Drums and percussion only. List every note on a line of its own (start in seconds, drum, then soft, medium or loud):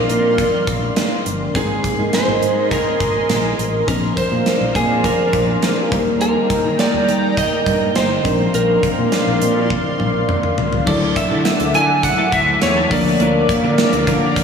0.09 closed hi-hat medium
0.38 kick medium
0.38 closed hi-hat medium
0.67 kick medium
0.67 closed hi-hat medium
0.96 snare loud
0.96 closed hi-hat medium
1.26 closed hi-hat medium
1.55 kick medium
1.55 closed hi-hat medium
1.84 kick medium
1.84 closed hi-hat medium
2.13 snare medium
2.13 closed hi-hat medium
2.43 closed hi-hat medium
2.71 kick medium
2.71 closed hi-hat medium
3.00 kick medium
3.00 closed hi-hat medium
3.29 snare loud
3.29 closed hi-hat medium
3.59 closed hi-hat medium
3.88 kick medium
3.88 closed hi-hat medium
4.17 kick medium
4.17 closed hi-hat medium
4.46 snare medium
4.46 closed hi-hat medium
4.75 kick medium
4.75 closed hi-hat medium
5.04 kick medium
5.04 closed hi-hat medium
5.33 kick medium
5.33 closed hi-hat medium
5.62 snare medium
5.62 closed hi-hat medium
5.92 kick medium
5.92 closed hi-hat medium
6.21 closed hi-hat medium
6.50 kick medium
6.50 closed hi-hat medium
6.79 snare medium
6.79 closed hi-hat medium
7.09 closed hi-hat medium
7.37 kick medium
7.37 closed hi-hat medium
7.66 kick medium
7.66 closed hi-hat medium
7.96 snare loud
7.96 closed hi-hat medium
8.25 kick loud
8.25 closed hi-hat medium
8.54 closed hi-hat medium
8.83 kick medium
8.83 closed hi-hat medium
9.12 snare medium
9.12 closed hi-hat medium
9.42 closed hi-hat medium
9.70 kick medium
9.70 high tom soft
10.00 mid tom medium
10.29 mid tom medium
10.43 mid tom medium
10.58 floor tom medium
10.73 floor tom medium
10.87 kick loud
10.87 crash medium
11.16 kick medium
11.16 closed hi-hat medium
11.45 snare loud
11.45 closed hi-hat medium
11.60 closed hi-hat medium
11.74 closed hi-hat medium
12.03 kick medium
12.03 closed hi-hat medium
12.32 kick medium
12.32 closed hi-hat medium
12.62 snare loud
12.62 closed hi-hat medium
12.91 kick loud
12.91 open hi-hat medium
13.20 closed hi-hat medium
13.49 kick medium
13.49 closed hi-hat medium
13.78 snare loud
13.78 closed hi-hat medium
13.93 closed hi-hat medium
14.07 kick medium
14.07 closed hi-hat medium
14.36 kick medium
14.36 closed hi-hat medium